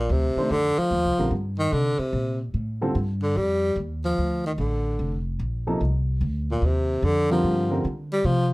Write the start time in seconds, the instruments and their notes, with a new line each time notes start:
Already playing: tenor saxophone A#2
0.09 upright bass D2, tenor saxophone C3
0.36 grand piano D#3 A3 D4 G4 C5, muted upright bass stroke
0.51 upright bass F2, tenor saxophone D3
0.78 tenor saxophone F3, muted upright bass stroke
0.91 upright bass D#2
1.05 upright bass C2
1.18 upright bass A#1, grand piano D3 G3 C4 F4 A#4
1.31 upright bass G2
1.59 tenor saxophone D#3
1.72 upright bass C3, tenor saxophone D3
1.99 tenor saxophone C3, muted upright bass stroke
2.13 upright bass A#2
2.54 upright bass A2
2.81 grand piano D3 G3 C4 F4 A4
2.95 upright bass G2
3.23 tenor saxophone D3
3.36 upright bass F2, tenor saxophone G3
3.76 upright bass D#2
4.05 tenor saxophone F3
4.18 upright bass D2
4.46 tenor saxophone D#3
4.58 upright bass A1, tenor saxophone D3
4.99 upright bass F1
5.40 upright bass A#1
5.67 grand piano C3 F3 A#3 D#4 A4
5.81 upright bass C2
6.21 upright bass D2
6.51 tenor saxophone A#2
6.62 upright bass D#2, tenor saxophone C3
7.03 upright bass F2, tenor saxophone D3
7.31 grand piano D3 G3 C4 F4 A#4, tenor saxophone F3
7.44 upright bass G2
7.70 grand piano D3 G3 C4 F4 A#4
7.85 upright bass D3
8.12 tenor saxophone G3
8.24 upright bass C3, tenor saxophone F3